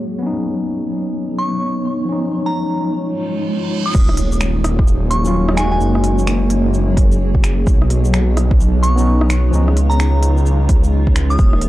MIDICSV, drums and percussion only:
0, 0, Header, 1, 2, 480
1, 0, Start_track
1, 0, Tempo, 465116
1, 231, Time_signature, 4, 2, 24, 8
1, 12061, End_track
2, 0, Start_track
2, 0, Title_t, "Drums"
2, 4073, Note_on_c, 9, 36, 111
2, 4073, Note_on_c, 9, 49, 98
2, 4073, Note_on_c, 9, 82, 58
2, 4176, Note_off_c, 9, 36, 0
2, 4176, Note_off_c, 9, 49, 0
2, 4176, Note_off_c, 9, 82, 0
2, 4221, Note_on_c, 9, 37, 37
2, 4306, Note_on_c, 9, 46, 74
2, 4324, Note_off_c, 9, 37, 0
2, 4410, Note_off_c, 9, 46, 0
2, 4459, Note_on_c, 9, 82, 59
2, 4548, Note_off_c, 9, 82, 0
2, 4548, Note_on_c, 9, 26, 104
2, 4548, Note_on_c, 9, 82, 58
2, 4652, Note_off_c, 9, 26, 0
2, 4652, Note_off_c, 9, 82, 0
2, 4792, Note_on_c, 9, 37, 67
2, 4792, Note_on_c, 9, 46, 76
2, 4895, Note_off_c, 9, 37, 0
2, 4895, Note_off_c, 9, 46, 0
2, 4942, Note_on_c, 9, 36, 106
2, 5031, Note_on_c, 9, 82, 61
2, 5046, Note_off_c, 9, 36, 0
2, 5134, Note_off_c, 9, 82, 0
2, 5271, Note_on_c, 9, 46, 75
2, 5374, Note_off_c, 9, 46, 0
2, 5418, Note_on_c, 9, 82, 60
2, 5521, Note_off_c, 9, 82, 0
2, 5661, Note_on_c, 9, 37, 68
2, 5753, Note_on_c, 9, 26, 104
2, 5753, Note_on_c, 9, 46, 68
2, 5753, Note_on_c, 9, 82, 57
2, 5764, Note_off_c, 9, 37, 0
2, 5856, Note_off_c, 9, 26, 0
2, 5856, Note_off_c, 9, 46, 0
2, 5856, Note_off_c, 9, 82, 0
2, 5994, Note_on_c, 9, 82, 60
2, 6097, Note_off_c, 9, 82, 0
2, 6143, Note_on_c, 9, 37, 37
2, 6231, Note_on_c, 9, 46, 71
2, 6246, Note_off_c, 9, 37, 0
2, 6334, Note_off_c, 9, 46, 0
2, 6383, Note_on_c, 9, 82, 57
2, 6474, Note_off_c, 9, 82, 0
2, 6474, Note_on_c, 9, 26, 108
2, 6474, Note_on_c, 9, 82, 56
2, 6577, Note_off_c, 9, 26, 0
2, 6577, Note_off_c, 9, 82, 0
2, 6709, Note_on_c, 9, 46, 73
2, 6813, Note_off_c, 9, 46, 0
2, 6955, Note_on_c, 9, 82, 58
2, 7059, Note_off_c, 9, 82, 0
2, 7193, Note_on_c, 9, 36, 107
2, 7196, Note_on_c, 9, 46, 70
2, 7296, Note_off_c, 9, 36, 0
2, 7299, Note_off_c, 9, 46, 0
2, 7346, Note_on_c, 9, 82, 61
2, 7449, Note_off_c, 9, 82, 0
2, 7583, Note_on_c, 9, 36, 63
2, 7676, Note_on_c, 9, 26, 102
2, 7676, Note_on_c, 9, 46, 72
2, 7676, Note_on_c, 9, 82, 59
2, 7686, Note_off_c, 9, 36, 0
2, 7779, Note_off_c, 9, 26, 0
2, 7779, Note_off_c, 9, 46, 0
2, 7779, Note_off_c, 9, 82, 0
2, 7914, Note_on_c, 9, 36, 127
2, 7915, Note_on_c, 9, 82, 58
2, 8017, Note_off_c, 9, 36, 0
2, 8018, Note_off_c, 9, 82, 0
2, 8068, Note_on_c, 9, 37, 36
2, 8156, Note_on_c, 9, 46, 71
2, 8171, Note_off_c, 9, 37, 0
2, 8259, Note_off_c, 9, 46, 0
2, 8306, Note_on_c, 9, 82, 56
2, 8398, Note_off_c, 9, 82, 0
2, 8398, Note_on_c, 9, 26, 113
2, 8398, Note_on_c, 9, 82, 56
2, 8502, Note_off_c, 9, 26, 0
2, 8502, Note_off_c, 9, 82, 0
2, 8638, Note_on_c, 9, 37, 62
2, 8638, Note_on_c, 9, 46, 75
2, 8742, Note_off_c, 9, 37, 0
2, 8742, Note_off_c, 9, 46, 0
2, 8783, Note_on_c, 9, 36, 111
2, 8879, Note_on_c, 9, 82, 60
2, 8886, Note_off_c, 9, 36, 0
2, 8982, Note_off_c, 9, 82, 0
2, 9117, Note_on_c, 9, 46, 73
2, 9221, Note_off_c, 9, 46, 0
2, 9267, Note_on_c, 9, 82, 59
2, 9371, Note_off_c, 9, 82, 0
2, 9508, Note_on_c, 9, 37, 62
2, 9598, Note_on_c, 9, 26, 107
2, 9598, Note_on_c, 9, 46, 70
2, 9598, Note_on_c, 9, 82, 58
2, 9611, Note_off_c, 9, 37, 0
2, 9701, Note_off_c, 9, 26, 0
2, 9701, Note_off_c, 9, 46, 0
2, 9701, Note_off_c, 9, 82, 0
2, 9840, Note_on_c, 9, 82, 56
2, 9943, Note_off_c, 9, 82, 0
2, 9989, Note_on_c, 9, 37, 36
2, 10080, Note_on_c, 9, 46, 70
2, 10093, Note_off_c, 9, 37, 0
2, 10183, Note_off_c, 9, 46, 0
2, 10226, Note_on_c, 9, 82, 55
2, 10319, Note_off_c, 9, 82, 0
2, 10319, Note_on_c, 9, 26, 107
2, 10319, Note_on_c, 9, 82, 58
2, 10422, Note_off_c, 9, 26, 0
2, 10422, Note_off_c, 9, 82, 0
2, 10554, Note_on_c, 9, 46, 73
2, 10657, Note_off_c, 9, 46, 0
2, 10705, Note_on_c, 9, 82, 30
2, 10796, Note_off_c, 9, 82, 0
2, 10796, Note_on_c, 9, 82, 60
2, 10899, Note_off_c, 9, 82, 0
2, 11032, Note_on_c, 9, 46, 72
2, 11034, Note_on_c, 9, 36, 109
2, 11135, Note_off_c, 9, 46, 0
2, 11137, Note_off_c, 9, 36, 0
2, 11185, Note_on_c, 9, 82, 60
2, 11288, Note_off_c, 9, 82, 0
2, 11423, Note_on_c, 9, 36, 65
2, 11515, Note_on_c, 9, 26, 103
2, 11515, Note_on_c, 9, 46, 69
2, 11515, Note_on_c, 9, 82, 56
2, 11527, Note_off_c, 9, 36, 0
2, 11618, Note_off_c, 9, 26, 0
2, 11618, Note_off_c, 9, 46, 0
2, 11618, Note_off_c, 9, 82, 0
2, 11666, Note_on_c, 9, 82, 33
2, 11751, Note_off_c, 9, 82, 0
2, 11751, Note_on_c, 9, 82, 52
2, 11753, Note_on_c, 9, 36, 123
2, 11854, Note_off_c, 9, 82, 0
2, 11856, Note_off_c, 9, 36, 0
2, 11901, Note_on_c, 9, 37, 36
2, 11987, Note_on_c, 9, 46, 71
2, 12004, Note_off_c, 9, 37, 0
2, 12061, Note_off_c, 9, 46, 0
2, 12061, End_track
0, 0, End_of_file